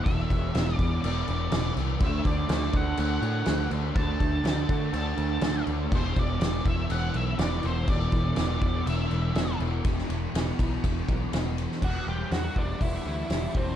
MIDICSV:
0, 0, Header, 1, 5, 480
1, 0, Start_track
1, 0, Key_signature, 1, "minor"
1, 0, Tempo, 490597
1, 55, Time_signature, 4, 2, 24, 8
1, 13461, End_track
2, 0, Start_track
2, 0, Title_t, "Lead electric guitar"
2, 0, Program_c, 0, 29
2, 34, Note_on_c, 0, 76, 112
2, 739, Note_off_c, 0, 76, 0
2, 739, Note_on_c, 0, 74, 112
2, 994, Note_off_c, 0, 74, 0
2, 998, Note_on_c, 0, 74, 88
2, 1682, Note_off_c, 0, 74, 0
2, 1992, Note_on_c, 0, 76, 96
2, 2217, Note_off_c, 0, 76, 0
2, 2221, Note_on_c, 0, 74, 84
2, 2706, Note_off_c, 0, 74, 0
2, 2706, Note_on_c, 0, 78, 100
2, 2925, Note_off_c, 0, 78, 0
2, 2936, Note_on_c, 0, 78, 102
2, 3609, Note_off_c, 0, 78, 0
2, 3875, Note_on_c, 0, 81, 117
2, 4818, Note_off_c, 0, 81, 0
2, 4830, Note_on_c, 0, 81, 114
2, 5514, Note_off_c, 0, 81, 0
2, 5824, Note_on_c, 0, 72, 106
2, 6057, Note_off_c, 0, 72, 0
2, 6058, Note_on_c, 0, 74, 101
2, 6532, Note_off_c, 0, 74, 0
2, 6536, Note_on_c, 0, 76, 106
2, 6765, Note_on_c, 0, 78, 121
2, 6773, Note_off_c, 0, 76, 0
2, 7008, Note_off_c, 0, 78, 0
2, 7011, Note_on_c, 0, 76, 100
2, 7229, Note_off_c, 0, 76, 0
2, 7233, Note_on_c, 0, 74, 98
2, 7482, Note_off_c, 0, 74, 0
2, 7490, Note_on_c, 0, 72, 85
2, 7724, Note_on_c, 0, 74, 109
2, 7730, Note_off_c, 0, 72, 0
2, 8679, Note_off_c, 0, 74, 0
2, 8683, Note_on_c, 0, 76, 88
2, 9362, Note_off_c, 0, 76, 0
2, 11589, Note_on_c, 0, 66, 106
2, 11819, Note_off_c, 0, 66, 0
2, 11823, Note_on_c, 0, 67, 93
2, 12050, Note_off_c, 0, 67, 0
2, 12054, Note_on_c, 0, 66, 100
2, 12301, Note_off_c, 0, 66, 0
2, 12301, Note_on_c, 0, 62, 84
2, 12540, Note_on_c, 0, 64, 99
2, 12546, Note_off_c, 0, 62, 0
2, 13273, Note_on_c, 0, 60, 80
2, 13284, Note_off_c, 0, 64, 0
2, 13461, Note_off_c, 0, 60, 0
2, 13461, End_track
3, 0, Start_track
3, 0, Title_t, "Distorted electric guitar"
3, 0, Program_c, 1, 30
3, 53, Note_on_c, 1, 40, 88
3, 72, Note_on_c, 1, 47, 98
3, 83, Note_on_c, 1, 52, 94
3, 516, Note_off_c, 1, 40, 0
3, 528, Note_on_c, 1, 40, 70
3, 531, Note_off_c, 1, 47, 0
3, 543, Note_on_c, 1, 47, 83
3, 545, Note_off_c, 1, 52, 0
3, 557, Note_on_c, 1, 52, 76
3, 755, Note_off_c, 1, 52, 0
3, 766, Note_on_c, 1, 52, 79
3, 789, Note_off_c, 1, 47, 0
3, 801, Note_on_c, 1, 47, 67
3, 997, Note_off_c, 1, 40, 0
3, 1009, Note_on_c, 1, 40, 80
3, 1014, Note_off_c, 1, 47, 0
3, 1025, Note_on_c, 1, 47, 89
3, 1028, Note_off_c, 1, 52, 0
3, 1040, Note_on_c, 1, 52, 87
3, 1472, Note_off_c, 1, 40, 0
3, 1483, Note_on_c, 1, 40, 75
3, 1488, Note_off_c, 1, 47, 0
3, 1500, Note_on_c, 1, 47, 78
3, 1502, Note_off_c, 1, 52, 0
3, 1514, Note_on_c, 1, 52, 90
3, 1709, Note_off_c, 1, 52, 0
3, 1721, Note_on_c, 1, 52, 84
3, 1737, Note_off_c, 1, 47, 0
3, 1749, Note_on_c, 1, 47, 65
3, 1944, Note_off_c, 1, 47, 0
3, 1948, Note_on_c, 1, 50, 99
3, 1949, Note_off_c, 1, 40, 0
3, 1949, Note_off_c, 1, 52, 0
3, 1966, Note_on_c, 1, 57, 102
3, 1977, Note_on_c, 1, 62, 100
3, 2433, Note_off_c, 1, 50, 0
3, 2437, Note_on_c, 1, 50, 78
3, 2448, Note_off_c, 1, 57, 0
3, 2452, Note_on_c, 1, 57, 84
3, 2464, Note_off_c, 1, 62, 0
3, 2468, Note_on_c, 1, 62, 86
3, 2670, Note_off_c, 1, 62, 0
3, 2673, Note_on_c, 1, 62, 72
3, 2703, Note_off_c, 1, 57, 0
3, 2707, Note_on_c, 1, 57, 66
3, 2911, Note_off_c, 1, 50, 0
3, 2915, Note_on_c, 1, 50, 76
3, 2919, Note_off_c, 1, 57, 0
3, 2930, Note_on_c, 1, 57, 91
3, 2942, Note_off_c, 1, 62, 0
3, 2946, Note_on_c, 1, 62, 94
3, 3381, Note_off_c, 1, 50, 0
3, 3393, Note_on_c, 1, 50, 78
3, 3396, Note_off_c, 1, 57, 0
3, 3407, Note_on_c, 1, 57, 78
3, 3415, Note_off_c, 1, 62, 0
3, 3419, Note_on_c, 1, 62, 78
3, 3623, Note_off_c, 1, 62, 0
3, 3626, Note_on_c, 1, 62, 83
3, 3643, Note_off_c, 1, 57, 0
3, 3655, Note_on_c, 1, 57, 71
3, 3858, Note_off_c, 1, 50, 0
3, 3870, Note_on_c, 1, 50, 97
3, 3875, Note_off_c, 1, 57, 0
3, 3886, Note_on_c, 1, 57, 95
3, 3894, Note_off_c, 1, 62, 0
3, 3898, Note_on_c, 1, 62, 111
3, 4332, Note_off_c, 1, 50, 0
3, 4344, Note_on_c, 1, 50, 76
3, 4347, Note_off_c, 1, 57, 0
3, 4358, Note_on_c, 1, 57, 78
3, 4370, Note_off_c, 1, 62, 0
3, 4374, Note_on_c, 1, 62, 83
3, 4582, Note_off_c, 1, 62, 0
3, 4586, Note_on_c, 1, 62, 83
3, 4602, Note_off_c, 1, 57, 0
3, 4613, Note_on_c, 1, 57, 68
3, 4811, Note_off_c, 1, 50, 0
3, 4822, Note_on_c, 1, 50, 84
3, 4827, Note_off_c, 1, 57, 0
3, 4838, Note_on_c, 1, 57, 85
3, 4851, Note_off_c, 1, 62, 0
3, 4855, Note_on_c, 1, 62, 82
3, 5295, Note_off_c, 1, 50, 0
3, 5307, Note_off_c, 1, 57, 0
3, 5307, Note_on_c, 1, 50, 75
3, 5319, Note_on_c, 1, 57, 79
3, 5329, Note_off_c, 1, 62, 0
3, 5333, Note_on_c, 1, 62, 93
3, 5538, Note_off_c, 1, 62, 0
3, 5542, Note_on_c, 1, 62, 82
3, 5560, Note_off_c, 1, 57, 0
3, 5572, Note_on_c, 1, 57, 76
3, 5777, Note_off_c, 1, 50, 0
3, 5780, Note_on_c, 1, 40, 99
3, 5790, Note_off_c, 1, 57, 0
3, 5797, Note_on_c, 1, 47, 110
3, 5810, Note_off_c, 1, 62, 0
3, 5811, Note_on_c, 1, 52, 102
3, 6264, Note_off_c, 1, 40, 0
3, 6268, Note_on_c, 1, 40, 84
3, 6275, Note_off_c, 1, 47, 0
3, 6287, Note_on_c, 1, 47, 77
3, 6300, Note_off_c, 1, 52, 0
3, 6304, Note_on_c, 1, 52, 87
3, 6500, Note_off_c, 1, 52, 0
3, 6504, Note_on_c, 1, 52, 88
3, 6525, Note_off_c, 1, 47, 0
3, 6537, Note_on_c, 1, 47, 57
3, 6743, Note_off_c, 1, 40, 0
3, 6747, Note_on_c, 1, 40, 86
3, 6752, Note_off_c, 1, 47, 0
3, 6764, Note_on_c, 1, 47, 81
3, 6771, Note_off_c, 1, 52, 0
3, 6775, Note_on_c, 1, 52, 92
3, 7218, Note_off_c, 1, 40, 0
3, 7221, Note_on_c, 1, 40, 73
3, 7232, Note_off_c, 1, 47, 0
3, 7244, Note_on_c, 1, 47, 82
3, 7255, Note_off_c, 1, 52, 0
3, 7259, Note_on_c, 1, 52, 84
3, 7463, Note_off_c, 1, 52, 0
3, 7467, Note_on_c, 1, 52, 87
3, 7483, Note_off_c, 1, 47, 0
3, 7494, Note_on_c, 1, 47, 73
3, 7697, Note_off_c, 1, 40, 0
3, 7701, Note_on_c, 1, 40, 90
3, 7705, Note_off_c, 1, 47, 0
3, 7716, Note_on_c, 1, 47, 110
3, 7720, Note_off_c, 1, 52, 0
3, 7732, Note_on_c, 1, 52, 100
3, 8175, Note_off_c, 1, 40, 0
3, 8187, Note_on_c, 1, 40, 77
3, 8191, Note_off_c, 1, 47, 0
3, 8203, Note_on_c, 1, 47, 80
3, 8205, Note_off_c, 1, 52, 0
3, 8217, Note_on_c, 1, 52, 85
3, 8424, Note_off_c, 1, 52, 0
3, 8435, Note_on_c, 1, 52, 83
3, 8452, Note_off_c, 1, 47, 0
3, 8463, Note_on_c, 1, 47, 63
3, 8657, Note_off_c, 1, 40, 0
3, 8669, Note_on_c, 1, 40, 75
3, 8672, Note_off_c, 1, 47, 0
3, 8684, Note_on_c, 1, 47, 88
3, 8687, Note_off_c, 1, 52, 0
3, 8699, Note_on_c, 1, 52, 86
3, 9128, Note_off_c, 1, 40, 0
3, 9140, Note_on_c, 1, 40, 71
3, 9145, Note_off_c, 1, 47, 0
3, 9156, Note_on_c, 1, 47, 79
3, 9159, Note_off_c, 1, 52, 0
3, 9171, Note_on_c, 1, 52, 79
3, 9374, Note_off_c, 1, 52, 0
3, 9386, Note_on_c, 1, 52, 78
3, 9408, Note_off_c, 1, 47, 0
3, 9419, Note_on_c, 1, 47, 71
3, 9616, Note_off_c, 1, 40, 0
3, 9618, Note_off_c, 1, 52, 0
3, 9633, Note_on_c, 1, 40, 94
3, 9635, Note_off_c, 1, 47, 0
3, 9648, Note_on_c, 1, 47, 96
3, 9662, Note_on_c, 1, 52, 97
3, 9876, Note_off_c, 1, 52, 0
3, 9888, Note_on_c, 1, 52, 70
3, 9903, Note_off_c, 1, 47, 0
3, 9915, Note_on_c, 1, 47, 59
3, 10108, Note_off_c, 1, 40, 0
3, 10120, Note_on_c, 1, 40, 75
3, 10127, Note_off_c, 1, 47, 0
3, 10138, Note_on_c, 1, 47, 82
3, 10141, Note_off_c, 1, 52, 0
3, 10153, Note_on_c, 1, 52, 84
3, 10347, Note_off_c, 1, 52, 0
3, 10358, Note_on_c, 1, 52, 82
3, 10376, Note_off_c, 1, 47, 0
3, 10388, Note_on_c, 1, 47, 67
3, 10602, Note_off_c, 1, 40, 0
3, 10832, Note_off_c, 1, 52, 0
3, 10844, Note_on_c, 1, 52, 76
3, 10863, Note_off_c, 1, 47, 0
3, 10875, Note_on_c, 1, 47, 65
3, 11084, Note_on_c, 1, 40, 86
3, 11087, Note_off_c, 1, 47, 0
3, 11099, Note_on_c, 1, 47, 88
3, 11103, Note_off_c, 1, 52, 0
3, 11115, Note_on_c, 1, 52, 103
3, 11553, Note_off_c, 1, 40, 0
3, 11560, Note_off_c, 1, 47, 0
3, 11568, Note_off_c, 1, 52, 0
3, 11581, Note_on_c, 1, 40, 75
3, 11815, Note_on_c, 1, 55, 66
3, 12056, Note_on_c, 1, 66, 73
3, 12297, Note_on_c, 1, 59, 66
3, 12520, Note_off_c, 1, 55, 0
3, 12532, Note_on_c, 1, 55, 73
3, 12779, Note_on_c, 1, 52, 67
3, 12782, Note_off_c, 1, 40, 0
3, 13012, Note_off_c, 1, 55, 0
3, 13023, Note_on_c, 1, 55, 68
3, 13255, Note_off_c, 1, 52, 0
3, 13267, Note_on_c, 1, 52, 71
3, 13296, Note_off_c, 1, 66, 0
3, 13461, Note_off_c, 1, 52, 0
3, 13461, Note_off_c, 1, 55, 0
3, 13461, Note_off_c, 1, 59, 0
3, 13461, End_track
4, 0, Start_track
4, 0, Title_t, "Picked electric bass"
4, 0, Program_c, 2, 34
4, 56, Note_on_c, 2, 28, 88
4, 242, Note_off_c, 2, 28, 0
4, 294, Note_on_c, 2, 28, 92
4, 480, Note_off_c, 2, 28, 0
4, 539, Note_on_c, 2, 28, 100
4, 724, Note_off_c, 2, 28, 0
4, 769, Note_on_c, 2, 40, 91
4, 956, Note_off_c, 2, 40, 0
4, 1012, Note_on_c, 2, 28, 96
4, 1198, Note_off_c, 2, 28, 0
4, 1257, Note_on_c, 2, 28, 98
4, 1441, Note_off_c, 2, 28, 0
4, 1488, Note_on_c, 2, 28, 97
4, 1675, Note_off_c, 2, 28, 0
4, 1725, Note_on_c, 2, 36, 84
4, 1913, Note_off_c, 2, 36, 0
4, 1964, Note_on_c, 2, 38, 92
4, 2152, Note_off_c, 2, 38, 0
4, 2202, Note_on_c, 2, 38, 95
4, 2390, Note_off_c, 2, 38, 0
4, 2436, Note_on_c, 2, 38, 93
4, 2626, Note_off_c, 2, 38, 0
4, 2678, Note_on_c, 2, 38, 91
4, 2867, Note_off_c, 2, 38, 0
4, 2916, Note_on_c, 2, 38, 97
4, 3106, Note_off_c, 2, 38, 0
4, 3150, Note_on_c, 2, 45, 102
4, 3342, Note_off_c, 2, 45, 0
4, 3398, Note_on_c, 2, 38, 95
4, 3586, Note_off_c, 2, 38, 0
4, 3628, Note_on_c, 2, 38, 87
4, 3820, Note_off_c, 2, 38, 0
4, 3869, Note_on_c, 2, 38, 99
4, 4061, Note_off_c, 2, 38, 0
4, 4110, Note_on_c, 2, 38, 93
4, 4301, Note_off_c, 2, 38, 0
4, 4343, Note_on_c, 2, 38, 105
4, 4537, Note_off_c, 2, 38, 0
4, 4590, Note_on_c, 2, 50, 98
4, 4781, Note_off_c, 2, 50, 0
4, 4823, Note_on_c, 2, 38, 96
4, 5017, Note_off_c, 2, 38, 0
4, 5063, Note_on_c, 2, 38, 97
4, 5256, Note_off_c, 2, 38, 0
4, 5296, Note_on_c, 2, 38, 100
4, 5492, Note_off_c, 2, 38, 0
4, 5548, Note_on_c, 2, 38, 88
4, 5739, Note_off_c, 2, 38, 0
4, 5785, Note_on_c, 2, 28, 96
4, 5978, Note_off_c, 2, 28, 0
4, 6029, Note_on_c, 2, 28, 94
4, 6220, Note_off_c, 2, 28, 0
4, 6260, Note_on_c, 2, 28, 98
4, 6454, Note_off_c, 2, 28, 0
4, 6508, Note_on_c, 2, 28, 92
4, 6699, Note_off_c, 2, 28, 0
4, 6750, Note_on_c, 2, 28, 102
4, 6940, Note_off_c, 2, 28, 0
4, 6988, Note_on_c, 2, 35, 98
4, 7179, Note_off_c, 2, 35, 0
4, 7229, Note_on_c, 2, 28, 98
4, 7420, Note_off_c, 2, 28, 0
4, 7478, Note_on_c, 2, 28, 94
4, 7665, Note_off_c, 2, 28, 0
4, 7710, Note_on_c, 2, 28, 98
4, 7900, Note_off_c, 2, 28, 0
4, 7948, Note_on_c, 2, 28, 93
4, 8139, Note_off_c, 2, 28, 0
4, 8196, Note_on_c, 2, 28, 97
4, 8384, Note_off_c, 2, 28, 0
4, 8425, Note_on_c, 2, 40, 89
4, 8618, Note_off_c, 2, 40, 0
4, 8673, Note_on_c, 2, 28, 99
4, 8863, Note_off_c, 2, 28, 0
4, 8911, Note_on_c, 2, 28, 92
4, 9101, Note_off_c, 2, 28, 0
4, 9149, Note_on_c, 2, 28, 89
4, 9340, Note_off_c, 2, 28, 0
4, 9392, Note_on_c, 2, 28, 85
4, 9583, Note_off_c, 2, 28, 0
4, 9633, Note_on_c, 2, 28, 88
4, 9798, Note_off_c, 2, 28, 0
4, 9877, Note_on_c, 2, 28, 91
4, 10041, Note_off_c, 2, 28, 0
4, 10119, Note_on_c, 2, 28, 89
4, 10282, Note_off_c, 2, 28, 0
4, 10362, Note_on_c, 2, 35, 88
4, 10525, Note_off_c, 2, 35, 0
4, 10604, Note_on_c, 2, 28, 95
4, 10766, Note_off_c, 2, 28, 0
4, 10845, Note_on_c, 2, 35, 92
4, 11008, Note_off_c, 2, 35, 0
4, 11081, Note_on_c, 2, 28, 93
4, 11408, Note_off_c, 2, 28, 0
4, 11562, Note_on_c, 2, 28, 78
4, 11723, Note_off_c, 2, 28, 0
4, 11807, Note_on_c, 2, 28, 85
4, 11968, Note_off_c, 2, 28, 0
4, 12048, Note_on_c, 2, 40, 85
4, 12209, Note_off_c, 2, 40, 0
4, 12290, Note_on_c, 2, 28, 84
4, 12450, Note_off_c, 2, 28, 0
4, 12530, Note_on_c, 2, 28, 94
4, 12691, Note_off_c, 2, 28, 0
4, 12772, Note_on_c, 2, 38, 84
4, 12933, Note_off_c, 2, 38, 0
4, 13012, Note_on_c, 2, 28, 83
4, 13173, Note_off_c, 2, 28, 0
4, 13254, Note_on_c, 2, 28, 78
4, 13416, Note_off_c, 2, 28, 0
4, 13461, End_track
5, 0, Start_track
5, 0, Title_t, "Drums"
5, 60, Note_on_c, 9, 36, 115
5, 66, Note_on_c, 9, 49, 84
5, 158, Note_off_c, 9, 36, 0
5, 164, Note_off_c, 9, 49, 0
5, 297, Note_on_c, 9, 36, 84
5, 302, Note_on_c, 9, 49, 64
5, 395, Note_off_c, 9, 36, 0
5, 400, Note_off_c, 9, 49, 0
5, 534, Note_on_c, 9, 49, 90
5, 543, Note_on_c, 9, 38, 116
5, 632, Note_off_c, 9, 49, 0
5, 640, Note_off_c, 9, 38, 0
5, 773, Note_on_c, 9, 36, 89
5, 773, Note_on_c, 9, 49, 64
5, 871, Note_off_c, 9, 36, 0
5, 871, Note_off_c, 9, 49, 0
5, 1016, Note_on_c, 9, 49, 97
5, 1114, Note_off_c, 9, 49, 0
5, 1248, Note_on_c, 9, 49, 66
5, 1346, Note_off_c, 9, 49, 0
5, 1482, Note_on_c, 9, 49, 95
5, 1491, Note_on_c, 9, 38, 120
5, 1580, Note_off_c, 9, 49, 0
5, 1589, Note_off_c, 9, 38, 0
5, 1727, Note_on_c, 9, 49, 71
5, 1825, Note_off_c, 9, 49, 0
5, 1959, Note_on_c, 9, 49, 87
5, 1964, Note_on_c, 9, 36, 121
5, 2057, Note_off_c, 9, 49, 0
5, 2061, Note_off_c, 9, 36, 0
5, 2202, Note_on_c, 9, 49, 63
5, 2203, Note_on_c, 9, 36, 87
5, 2300, Note_off_c, 9, 49, 0
5, 2301, Note_off_c, 9, 36, 0
5, 2437, Note_on_c, 9, 49, 94
5, 2446, Note_on_c, 9, 38, 122
5, 2535, Note_off_c, 9, 49, 0
5, 2543, Note_off_c, 9, 38, 0
5, 2672, Note_on_c, 9, 49, 68
5, 2677, Note_on_c, 9, 36, 90
5, 2770, Note_off_c, 9, 49, 0
5, 2774, Note_off_c, 9, 36, 0
5, 2909, Note_on_c, 9, 49, 92
5, 3007, Note_off_c, 9, 49, 0
5, 3155, Note_on_c, 9, 49, 68
5, 3253, Note_off_c, 9, 49, 0
5, 3381, Note_on_c, 9, 49, 88
5, 3390, Note_on_c, 9, 38, 116
5, 3479, Note_off_c, 9, 49, 0
5, 3488, Note_off_c, 9, 38, 0
5, 3631, Note_on_c, 9, 49, 66
5, 3728, Note_off_c, 9, 49, 0
5, 3869, Note_on_c, 9, 49, 79
5, 3872, Note_on_c, 9, 36, 108
5, 3967, Note_off_c, 9, 49, 0
5, 3970, Note_off_c, 9, 36, 0
5, 4112, Note_on_c, 9, 49, 62
5, 4113, Note_on_c, 9, 36, 89
5, 4210, Note_off_c, 9, 49, 0
5, 4211, Note_off_c, 9, 36, 0
5, 4353, Note_on_c, 9, 49, 90
5, 4362, Note_on_c, 9, 38, 118
5, 4451, Note_off_c, 9, 49, 0
5, 4459, Note_off_c, 9, 38, 0
5, 4590, Note_on_c, 9, 36, 94
5, 4590, Note_on_c, 9, 49, 67
5, 4688, Note_off_c, 9, 36, 0
5, 4688, Note_off_c, 9, 49, 0
5, 4828, Note_on_c, 9, 49, 91
5, 4926, Note_off_c, 9, 49, 0
5, 5063, Note_on_c, 9, 49, 64
5, 5161, Note_off_c, 9, 49, 0
5, 5296, Note_on_c, 9, 49, 91
5, 5305, Note_on_c, 9, 38, 124
5, 5394, Note_off_c, 9, 49, 0
5, 5403, Note_off_c, 9, 38, 0
5, 5544, Note_on_c, 9, 49, 66
5, 5642, Note_off_c, 9, 49, 0
5, 5790, Note_on_c, 9, 49, 93
5, 5791, Note_on_c, 9, 36, 113
5, 5887, Note_off_c, 9, 49, 0
5, 5889, Note_off_c, 9, 36, 0
5, 6029, Note_on_c, 9, 49, 68
5, 6032, Note_on_c, 9, 36, 86
5, 6127, Note_off_c, 9, 49, 0
5, 6130, Note_off_c, 9, 36, 0
5, 6271, Note_on_c, 9, 49, 95
5, 6280, Note_on_c, 9, 38, 127
5, 6369, Note_off_c, 9, 49, 0
5, 6378, Note_off_c, 9, 38, 0
5, 6509, Note_on_c, 9, 49, 70
5, 6511, Note_on_c, 9, 36, 93
5, 6607, Note_off_c, 9, 49, 0
5, 6609, Note_off_c, 9, 36, 0
5, 6749, Note_on_c, 9, 49, 92
5, 6847, Note_off_c, 9, 49, 0
5, 6986, Note_on_c, 9, 49, 69
5, 7084, Note_off_c, 9, 49, 0
5, 7226, Note_on_c, 9, 49, 85
5, 7235, Note_on_c, 9, 38, 118
5, 7324, Note_off_c, 9, 49, 0
5, 7333, Note_off_c, 9, 38, 0
5, 7463, Note_on_c, 9, 49, 67
5, 7561, Note_off_c, 9, 49, 0
5, 7704, Note_on_c, 9, 49, 86
5, 7709, Note_on_c, 9, 36, 113
5, 7802, Note_off_c, 9, 49, 0
5, 7807, Note_off_c, 9, 36, 0
5, 7944, Note_on_c, 9, 49, 64
5, 7949, Note_on_c, 9, 36, 84
5, 8041, Note_off_c, 9, 49, 0
5, 8046, Note_off_c, 9, 36, 0
5, 8181, Note_on_c, 9, 49, 88
5, 8189, Note_on_c, 9, 38, 112
5, 8278, Note_off_c, 9, 49, 0
5, 8287, Note_off_c, 9, 38, 0
5, 8426, Note_on_c, 9, 49, 65
5, 8430, Note_on_c, 9, 36, 97
5, 8524, Note_off_c, 9, 49, 0
5, 8528, Note_off_c, 9, 36, 0
5, 8678, Note_on_c, 9, 49, 89
5, 8776, Note_off_c, 9, 49, 0
5, 8911, Note_on_c, 9, 49, 60
5, 9009, Note_off_c, 9, 49, 0
5, 9152, Note_on_c, 9, 49, 88
5, 9161, Note_on_c, 9, 38, 115
5, 9250, Note_off_c, 9, 49, 0
5, 9258, Note_off_c, 9, 38, 0
5, 9394, Note_on_c, 9, 49, 61
5, 9492, Note_off_c, 9, 49, 0
5, 9632, Note_on_c, 9, 51, 98
5, 9636, Note_on_c, 9, 36, 108
5, 9730, Note_off_c, 9, 51, 0
5, 9734, Note_off_c, 9, 36, 0
5, 9768, Note_on_c, 9, 38, 34
5, 9866, Note_off_c, 9, 38, 0
5, 9880, Note_on_c, 9, 51, 74
5, 9978, Note_off_c, 9, 51, 0
5, 10128, Note_on_c, 9, 51, 107
5, 10137, Note_on_c, 9, 38, 114
5, 10226, Note_off_c, 9, 51, 0
5, 10235, Note_off_c, 9, 38, 0
5, 10363, Note_on_c, 9, 36, 88
5, 10366, Note_on_c, 9, 51, 79
5, 10461, Note_off_c, 9, 36, 0
5, 10464, Note_off_c, 9, 51, 0
5, 10605, Note_on_c, 9, 36, 90
5, 10606, Note_on_c, 9, 51, 100
5, 10703, Note_off_c, 9, 36, 0
5, 10704, Note_off_c, 9, 51, 0
5, 10845, Note_on_c, 9, 36, 88
5, 10847, Note_on_c, 9, 51, 74
5, 10943, Note_off_c, 9, 36, 0
5, 10945, Note_off_c, 9, 51, 0
5, 11086, Note_on_c, 9, 51, 99
5, 11095, Note_on_c, 9, 38, 112
5, 11184, Note_off_c, 9, 51, 0
5, 11193, Note_off_c, 9, 38, 0
5, 11330, Note_on_c, 9, 51, 69
5, 11428, Note_off_c, 9, 51, 0
5, 11461, Note_on_c, 9, 38, 30
5, 11559, Note_off_c, 9, 38, 0
5, 11567, Note_on_c, 9, 36, 99
5, 11568, Note_on_c, 9, 57, 105
5, 11665, Note_off_c, 9, 36, 0
5, 11666, Note_off_c, 9, 57, 0
5, 12047, Note_on_c, 9, 46, 56
5, 12056, Note_on_c, 9, 38, 113
5, 12145, Note_off_c, 9, 46, 0
5, 12154, Note_off_c, 9, 38, 0
5, 12290, Note_on_c, 9, 36, 87
5, 12388, Note_off_c, 9, 36, 0
5, 12532, Note_on_c, 9, 36, 84
5, 12532, Note_on_c, 9, 46, 56
5, 12629, Note_off_c, 9, 36, 0
5, 12630, Note_off_c, 9, 46, 0
5, 13011, Note_on_c, 9, 46, 60
5, 13019, Note_on_c, 9, 38, 111
5, 13108, Note_off_c, 9, 46, 0
5, 13117, Note_off_c, 9, 38, 0
5, 13256, Note_on_c, 9, 36, 86
5, 13353, Note_off_c, 9, 36, 0
5, 13461, End_track
0, 0, End_of_file